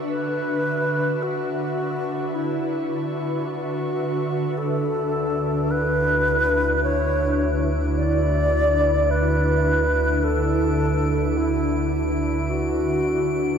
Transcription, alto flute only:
X:1
M:4/4
L:1/16
Q:1/4=53
K:D
V:1 name="Alto flute"
B4 F4 E2 E2 F4 | A4 B4 c3 z d4 | B4 A4 E2 E2 F4 |]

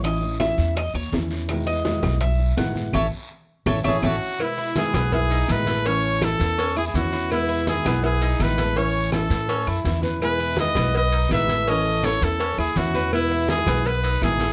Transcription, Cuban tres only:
X:1
M:4/4
L:1/8
Q:1/4=165
K:E
V:1 name="Cuban tres"
d2 e2 d c z2 | z d3 e2 f2 | [Ace] z3 [Ace] [Ace] [Ace] z | z E2 B,2 D2 A |
C2 A2 C E2 B- | B E2 B,2 D2 A | C2 A2 C E2 B- | B E2 B,2 D2 A |
C2 A2 C E2 B- | B E2 B,2 D2 A |]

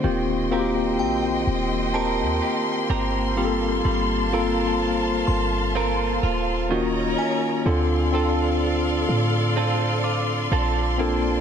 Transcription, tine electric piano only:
X:1
M:4/4
L:1/8
Q:"Swing 16ths" 1/4=63
K:Eblyd
V:1 name="Tine electric piano"
[B,CFG] [B,CF^FG]4 z2 [B,C=FGA]- | [B,CFGA] [B,CFA]4 z [B,_DF_G]2 | [CDFA] [CDFA]4 z2 [CDFA] |]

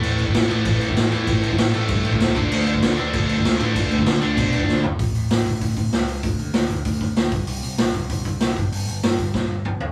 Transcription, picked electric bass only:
X:1
M:4/4
L:1/8
Q:1/4=193
K:D
V:1 name="Picked electric bass" clef=bass
A,,, A,,, A,,, A,,, A,,, A,,, A,,, E,, | A,,, A,,, A,,, A,,, G,, A,,, C,, D,, | D,, D,, D,, D,, D,, D,, D,, A,, | D,, D,, D,, D,, B,, D,, D,, G,,, |
A,,, A,,, A,,, A,,, A,,,2 C,,2 | D,, D,, D,, D,, D,,2 D,, =C,, | =C,, C,, C,, C,, C,,2 C,, G,,, | G,,, G,,, G,,, G,,, G,,,2 G,,, G,,, |]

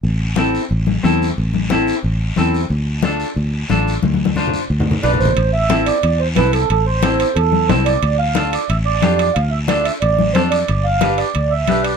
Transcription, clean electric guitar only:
X:1
M:4/4
L:1/8
Q:1/4=180
K:Am
V:1 name="Clean electric guitar"
z2 [CEA] z3 [CEA] z | z2 [CEA] z3 [CEA] z | z2 [DFA] z3 [DFA] z | z2 [DFc] z3 [DFB] z |
z2 [CEA] z3 [CEA] z | z2 [CEA] z3 [CEA] z | z2 [DFA] z3 [DFG] z | z2 [DFA] z3 [DFA] z |
z2 [DGB] z3 [DGB] z |]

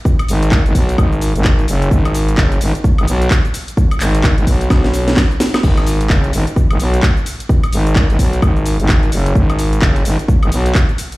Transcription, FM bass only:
X:1
M:4/4
L:1/16
Q:"Swing 16ths" 1/4=129
K:F#mix
V:1 name="FM bass" clef=bass
z2 G,,,3 G,,, B,,,2 G,,,3 G,,,3 F,,,2 | G,,,4 F,,,2 G,,, z2 G,,, B,,,2 z4 | z2 G,,,3 G,,, B,,,2 B,,,4 z4 | G,,,4 F,,,2 G,,, z2 G,,, B,,,2 z4 |
z2 G,,,3 G,,, B,,,2 G,,,3 G,,,3 F,,,2 | G,,,4 F,,,2 G,,, z2 G,,, B,,,2 z4 |]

